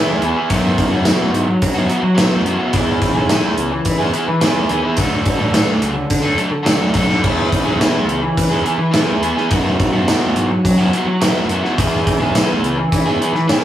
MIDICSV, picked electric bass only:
0, 0, Header, 1, 2, 480
1, 0, Start_track
1, 0, Key_signature, 4, "major"
1, 0, Tempo, 560748
1, 424, Time_signature, 4, 2, 24, 8
1, 5225, Tempo, 567644
1, 11599, End_track
2, 0, Start_track
2, 0, Title_t, "Picked electric bass"
2, 0, Program_c, 0, 34
2, 182, Note_on_c, 0, 40, 92
2, 274, Note_off_c, 0, 40, 0
2, 425, Note_on_c, 0, 42, 82
2, 606, Note_off_c, 0, 42, 0
2, 772, Note_on_c, 0, 42, 91
2, 957, Note_off_c, 0, 42, 0
2, 1134, Note_on_c, 0, 44, 83
2, 1318, Note_off_c, 0, 44, 0
2, 1389, Note_on_c, 0, 54, 107
2, 1568, Note_off_c, 0, 54, 0
2, 1735, Note_on_c, 0, 54, 88
2, 1919, Note_off_c, 0, 54, 0
2, 2087, Note_on_c, 0, 42, 96
2, 2183, Note_off_c, 0, 42, 0
2, 2335, Note_on_c, 0, 40, 90
2, 2518, Note_off_c, 0, 40, 0
2, 2681, Note_on_c, 0, 35, 82
2, 2869, Note_off_c, 0, 35, 0
2, 3052, Note_on_c, 0, 37, 86
2, 3237, Note_off_c, 0, 37, 0
2, 3299, Note_on_c, 0, 52, 101
2, 3481, Note_off_c, 0, 52, 0
2, 3661, Note_on_c, 0, 52, 98
2, 3843, Note_off_c, 0, 52, 0
2, 4026, Note_on_c, 0, 39, 96
2, 4115, Note_off_c, 0, 39, 0
2, 4259, Note_on_c, 0, 38, 96
2, 4442, Note_off_c, 0, 38, 0
2, 4610, Note_on_c, 0, 33, 82
2, 4797, Note_off_c, 0, 33, 0
2, 4977, Note_on_c, 0, 37, 86
2, 5163, Note_off_c, 0, 37, 0
2, 5221, Note_on_c, 0, 50, 99
2, 5404, Note_off_c, 0, 50, 0
2, 5567, Note_on_c, 0, 50, 89
2, 5755, Note_off_c, 0, 50, 0
2, 5939, Note_on_c, 0, 35, 90
2, 6031, Note_off_c, 0, 35, 0
2, 6189, Note_on_c, 0, 40, 89
2, 6368, Note_off_c, 0, 40, 0
2, 6533, Note_on_c, 0, 35, 83
2, 6718, Note_off_c, 0, 35, 0
2, 6881, Note_on_c, 0, 37, 76
2, 7071, Note_off_c, 0, 37, 0
2, 7144, Note_on_c, 0, 52, 93
2, 7325, Note_off_c, 0, 52, 0
2, 7487, Note_on_c, 0, 52, 91
2, 7674, Note_off_c, 0, 52, 0
2, 7854, Note_on_c, 0, 40, 100
2, 7948, Note_off_c, 0, 40, 0
2, 8106, Note_on_c, 0, 42, 89
2, 8287, Note_off_c, 0, 42, 0
2, 8461, Note_on_c, 0, 42, 102
2, 8644, Note_off_c, 0, 42, 0
2, 8818, Note_on_c, 0, 44, 92
2, 9002, Note_off_c, 0, 44, 0
2, 9066, Note_on_c, 0, 54, 105
2, 9248, Note_off_c, 0, 54, 0
2, 9411, Note_on_c, 0, 54, 94
2, 9598, Note_off_c, 0, 54, 0
2, 9775, Note_on_c, 0, 42, 93
2, 9870, Note_off_c, 0, 42, 0
2, 10027, Note_on_c, 0, 40, 97
2, 10208, Note_off_c, 0, 40, 0
2, 10376, Note_on_c, 0, 35, 100
2, 10562, Note_off_c, 0, 35, 0
2, 10725, Note_on_c, 0, 37, 92
2, 10915, Note_off_c, 0, 37, 0
2, 10988, Note_on_c, 0, 52, 98
2, 11170, Note_off_c, 0, 52, 0
2, 11329, Note_on_c, 0, 52, 93
2, 11517, Note_off_c, 0, 52, 0
2, 11599, End_track
0, 0, End_of_file